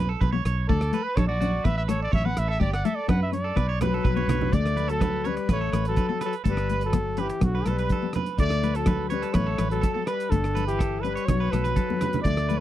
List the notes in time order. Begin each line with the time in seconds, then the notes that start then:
Already playing: B1
0.09 A4
0.21 B1 B4, kick, high conga
0.32 B3 C#5
0.45 B1 C#5, cross-stick, closed hi-hat
0.69 D2 A3 A4 D5, kick, muted conga
0.81 cross-stick
0.92 A3 B4, closed hi-hat
1.03 B4
1.16 A#1 A4 C#5, muted nylon-string guitar stroke, kick, cross-stick, high conga
1.27 F#4 D5
1.41 C#4 F#4, closed hi-hat, muted conga, high conga
1.64 A1 B3 B4 E5, kick, cross-stick
1.78 E5
1.88 A3 A4 C#5, cross-stick, closed hi-hat, muted conga
2.03 D5
2.12 A1 C#5 E5, kick, high conga
2.25 B3 B4 F#5
2.37 A1 E5, cross-stick, closed hi-hat
2.48 A4 E5
2.60 G1 A3 G4 D5, kick, muted conga
2.73 D5 F#5, cross-stick
2.85 A3 A4 E5, closed hi-hat
2.96 D5
3.08 F#2 B3 B4 F#5, kick, cross-stick, high conga
3.23 E5
3.32 C#4 D5, closed hi-hat, muted conga
3.44 A4
3.56 B1 B3 B4, kick, cross-stick, muted conga
3.69 C#5
3.81 F#3 A3 B4, cross-stick, closed hi-hat, muted conga, high conga, low conga
3.94 A4, high conga
4.04 B1 B4, kick, high conga
4.16 B3 C#5, high conga
4.28 B1 C#5, cross-stick, closed hi-hat, low conga
4.41 low conga
4.52 D2 A3 D5, kick, closed hi-hat, muted conga
4.66 cross-stick
4.76 A3 B4, closed hi-hat
4.88 F#3 A4, closed hi-hat
5.00 B3 B4, kick, cross-stick, closed hi-hat, high conga
5.24 C#4 B4 C#5, closed hi-hat
5.28 G3
5.37 muted clean electric guitar stroke, closed hi-hat
5.48 A1 A3 B3 B4 C#5, kick, cross-stick, closed hi-hat, muted conga, high conga
5.61 A4
5.72 A1 A3 B4, cross-stick, closed hi-hat
5.85 F#3 A4, closed hi-hat
5.96 B4, kick, closed hi-hat, high conga
6.09 B3 A4
6.21 F#3 A4 B4, cross-stick, closed hi-hat, muted conga
6.33 closed hi-hat
6.44 G1 A3 A4, kick, closed hi-hat, muted conga
6.49 G3 B4
6.57 cross-stick
6.69 A3 B4, closed hi-hat
6.81 A4, closed hi-hat
6.85 F#3
6.93 B3, kick, cross-stick, closed hi-hat
7.17 E3 C#4 G4 B4, closed hi-hat
7.29 muted clean electric guitar stroke, closed hi-hat
7.41 B1 D3 B3 F#4, kick, cross-stick, closed hi-hat, muted conga, high conga
7.55 B4
7.66 B1 A3 A4 B4, cross-stick, closed hi-hat, muted conga
7.70 G3
7.78 B4, closed hi-hat
7.89 A4, kick, closed hi-hat, high conga
8.02 B3
8.13 B4, cross-stick, closed hi-hat, muted conga, high conga, low conga
8.26 closed hi-hat
8.38 D2 A3 D5, kick, closed hi-hat, muted conga
8.50 cross-stick
8.63 A3 B4, closed hi-hat
8.75 F#3 A4, closed hi-hat
8.86 B4, muted nylon-string guitar stroke, kick, cross-stick, closed hi-hat, high conga
9.09 G3 C#4 B4 C#5, closed hi-hat
9.22 A4, closed hi-hat
9.33 A1 A3 B3 B4 C#5, kick, cross-stick, closed hi-hat, muted conga, high conga
9.47 A4
9.58 A1 A3 B4, cross-stick, closed hi-hat, muted conga
9.71 F#3 A4, closed hi-hat
9.81 A4, kick, closed hi-hat, high conga
9.94 B3 A4
10.06 G3 B4, cross-stick, closed hi-hat
10.20 closed hi-hat
10.30 G1 D3 A3 A4, muted clean electric guitar stroke, kick, closed hi-hat, muted conga
10.44 cross-stick
10.55 B4, muted nylon-string guitar stroke, closed hi-hat
10.67 E3 G4, closed hi-hat
10.79 A4, kick, cross-stick, closed hi-hat
11.02 G3 C#4 B4, closed hi-hat
11.15 C#5, closed hi-hat
11.26 B1 F#3 B3 C#5, kick, cross-stick, closed hi-hat, muted conga, high conga
11.40 B4
11.50 B1 F#3 A3 A4 B4, cross-stick, closed hi-hat
11.64 B4, closed hi-hat, high conga
11.76 A4, kick, closed hi-hat, high conga
11.90 B3, high conga
12.01 B4, cross-stick, closed hi-hat, low conga
12.13 closed hi-hat, low conga
12.22 D2 A3 D5, muted nylon-string guitar stroke, kick, closed hi-hat
12.26 muted conga
12.37 cross-stick
12.49 A3 B4, closed hi-hat